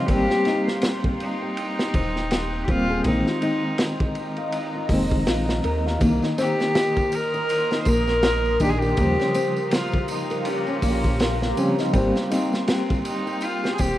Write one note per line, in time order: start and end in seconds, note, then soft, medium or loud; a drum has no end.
0.00 0.10 C#3 medium
0.00 0.10 F3 medium
0.00 0.07 G3 medium
0.00 0.10 C4 medium
0.00 3.01 C6 medium
0.07 0.28 G#1 loud
0.07 2.63 G3 medium
0.07 2.64 A#3 medium
0.07 0.30 C4 medium
0.07 0.79 G4 loud
0.07 3.02 G5 medium
0.07 kick loud
0.07 ride medium
0.11 2.65 C4 medium
0.30 0.45 G4 medium
0.30 snare soft
0.45 0.67 D#4 loud
0.45 snare soft
0.45 ride medium
0.68 snare medium
0.82 snare loud
0.82 ride loud
1.04 kick loud
1.20 2.65 D#4 loud
1.20 ride medium
1.42 1.77 G5 medium
1.57 ride medium
1.79 1.93 G4 medium
1.79 snare medium
1.94 2.65 D#1 medium
1.94 2.30 C4 medium
1.94 kick loud
1.94 ride medium
2.16 snare soft
2.31 2.52 G5 medium
2.31 snare loud
2.31 ride medium
2.64 2.89 G3 medium
2.64 2.72 G4 medium
2.68 3.02 D#1 medium
2.68 2.90 A#3 medium
2.68 2.90 C4 loud
2.68 3.06 F4 loud
2.68 2.88 G4 loud
2.68 kick loud
2.68 ride medium
2.90 3.04 G#4 loud
3.04 3.24 A#1 loud
3.04 4.87 D#3 medium
3.04 4.88 G#3 medium
3.04 3.26 A#3 medium
3.04 4.13 D#4 loud
3.04 5.98 D#5 medium
3.04 5.98 A#5 medium
3.04 kick loud
3.04 ride medium
3.08 4.89 C4 medium
3.27 3.41 F4 medium
3.27 snare soft
3.42 3.63 D#4 loud
3.42 ride medium
3.78 snare loud
3.78 ride medium
4.00 kick loud
4.15 ride medium
4.36 4.73 F5 medium
4.36 ride soft
4.52 ride medium
4.75 4.90 F4 medium
4.89 5.27 F1 medium
4.89 5.97 D#3 medium
4.89 5.98 G#3 medium
4.89 5.10 A#3 medium
4.89 kick loud
4.89 open hi-hat medium
4.93 5.99 C4 medium
5.11 kick medium
5.27 5.61 A#1 medium
5.27 5.47 F4 medium
5.27 snare loud
5.27 ride medium
5.49 5.58 F4 medium
5.49 snare medium
5.64 5.98 D#2 loud
5.64 5.85 A#4 loud
5.64 ride medium
5.86 6.00 F5 medium
5.86 snare soft
5.99 6.21 C2 loud
5.99 8.56 D#3 medium
5.99 13.98 A#3 medium
5.99 6.22 A#3 medium
5.99 8.57 A#3 medium
5.99 13.98 A#4 medium
5.99 8.95 A#4 medium
5.99 11.90 C6 medium
5.99 8.95 D#6 medium
5.99 kick loud
5.99 ride medium
5.99 tambourine medium
6.22 6.38 D#4 medium
6.22 snare soft
6.22 tambourine soft
6.38 6.59 C4 loud
6.38 7.16 G4 loud
6.38 snare soft
6.38 ride medium
6.38 tambourine medium
6.60 snare medium
6.60 tambourine soft
6.75 snare loud
6.75 ride medium
6.75 tambourine soft
6.96 kick medium
6.96 tambourine soft
7.12 7.81 A#4 loud
7.12 ride medium
7.12 tambourine medium
7.34 7.69 D#5 medium
7.34 tambourine soft
7.49 ride medium
7.49 tambourine medium
7.71 7.86 D#4 medium
7.71 snare medium
7.71 tambourine soft
7.82 7.90 C5 medium
7.82 ride medium
7.86 8.58 A#1 medium
7.86 8.22 A#3 medium
7.86 8.62 A#4 loud
7.86 kick loud
7.86 tambourine medium
8.07 snare soft
8.07 tambourine soft
8.22 8.44 D#5 medium
8.22 snare loud
8.22 ride medium
8.22 tambourine soft
8.45 tambourine soft
8.60 8.94 A#1 medium
8.60 8.82 D#3 medium
8.60 8.83 A#3 medium
8.60 8.83 D4 medium
8.60 8.80 D#4 loud
8.60 8.71 G4 loud
8.60 kick medium
8.60 ride medium
8.60 tambourine medium
8.69 8.80 G#4 loud
8.79 9.66 G4 loud
8.79 8.97 G4 loud
8.79 tambourine soft
8.97 9.17 D#2 loud
8.97 11.53 C#3 medium
8.97 11.53 F3 medium
8.97 11.54 G3 medium
8.97 9.18 A#3 medium
8.97 11.91 G4 medium
8.97 11.91 F5 medium
8.97 11.91 A#5 medium
8.97 kick loud
8.97 ride medium
8.97 tambourine medium
9.01 11.55 C5 medium
9.19 9.34 C#4 medium
9.19 snare soft
9.19 tambourine soft
9.34 9.55 C4 loud
9.34 ride medium
9.34 tambourine loud
9.56 tambourine soft
9.67 9.75 G4 medium
9.71 10.09 F4 loud
9.71 snare loud
9.71 ride loud
9.71 tambourine soft
9.92 kick loud
9.92 tambourine soft
10.08 10.48 D#4 medium
10.08 ride medium
10.08 tambourine medium
10.30 10.65 A#4 medium
10.30 ride soft
10.30 tambourine soft
10.45 11.57 C#4 medium
10.45 ride medium
10.45 tambourine medium
10.67 10.82 C#4 medium
10.67 tambourine soft
10.82 11.54 A#1 medium
10.82 11.19 A#3 medium
10.82 kick medium
10.82 open hi-hat medium
10.82 tambourine medium
11.04 kick medium
11.04 tambourine soft
11.19 11.41 A#4 medium
11.19 snare loud
11.19 ride loud
11.19 tambourine medium
11.42 snare medium
11.42 tambourine soft
11.57 11.78 C#3 medium
11.57 11.79 F3 medium
11.57 11.79 G3 medium
11.57 11.79 C4 medium
11.57 11.77 C#4 loud
11.57 ride medium
11.57 tambourine medium
11.79 11.94 D#4 loud
11.79 snare soft
11.79 tambourine soft
11.93 12.13 G#1 loud
11.93 13.98 G3 medium
11.93 13.98 A#3 medium
11.93 12.15 C4 medium
11.93 13.98 G5 medium
11.93 13.98 C6 medium
11.93 kick loud
11.93 ride medium
11.93 tambourine soft
11.98 13.98 C4 medium
12.16 12.30 G4 medium
12.16 snare soft
12.16 tambourine soft
12.31 12.66 C4 medium
12.31 12.52 D#4 loud
12.31 snare soft
12.31 ride medium
12.31 tambourine medium
12.53 snare medium
12.53 tambourine soft
12.68 13.03 C4 medium
12.68 snare loud
12.68 ride medium
12.68 tambourine medium
12.90 kick loud
12.90 tambourine soft
13.05 13.46 D#4 loud
13.05 ride medium
13.05 tambourine medium
13.27 13.62 G5 medium
13.27 tambourine soft
13.41 13.73 F4 loud
13.41 ride medium
13.41 tambourine medium
13.64 13.78 G4 medium
13.64 snare medium
13.64 tambourine soft
13.74 13.82 G#4 medium
13.78 13.98 D#1 medium
13.78 13.98 C4 medium
13.78 13.98 G4 loud
13.78 kick loud
13.78 ride medium
13.78 tambourine medium